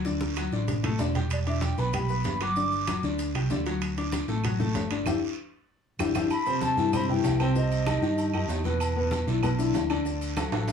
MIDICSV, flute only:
0, 0, Header, 1, 2, 480
1, 0, Start_track
1, 0, Key_signature, 1, "major"
1, 0, Tempo, 312663
1, 80, Time_signature, 4, 2, 24, 8
1, 16459, End_track
2, 0, Start_track
2, 0, Title_t, "Flute"
2, 0, Program_c, 0, 73
2, 2042, Note_on_c, 0, 74, 82
2, 2134, Note_off_c, 0, 74, 0
2, 2282, Note_on_c, 0, 76, 77
2, 2490, Note_off_c, 0, 76, 0
2, 2521, Note_on_c, 0, 79, 91
2, 2762, Note_on_c, 0, 83, 97
2, 2785, Note_off_c, 0, 79, 0
2, 3723, Note_on_c, 0, 86, 101
2, 3746, Note_off_c, 0, 83, 0
2, 4669, Note_off_c, 0, 86, 0
2, 9695, Note_on_c, 0, 83, 116
2, 10137, Note_off_c, 0, 83, 0
2, 10187, Note_on_c, 0, 81, 105
2, 10623, Note_off_c, 0, 81, 0
2, 10660, Note_on_c, 0, 83, 115
2, 10876, Note_off_c, 0, 83, 0
2, 10903, Note_on_c, 0, 79, 89
2, 11340, Note_off_c, 0, 79, 0
2, 11379, Note_on_c, 0, 79, 94
2, 11594, Note_off_c, 0, 79, 0
2, 11615, Note_on_c, 0, 75, 93
2, 12984, Note_off_c, 0, 75, 0
2, 16459, End_track
0, 0, End_of_file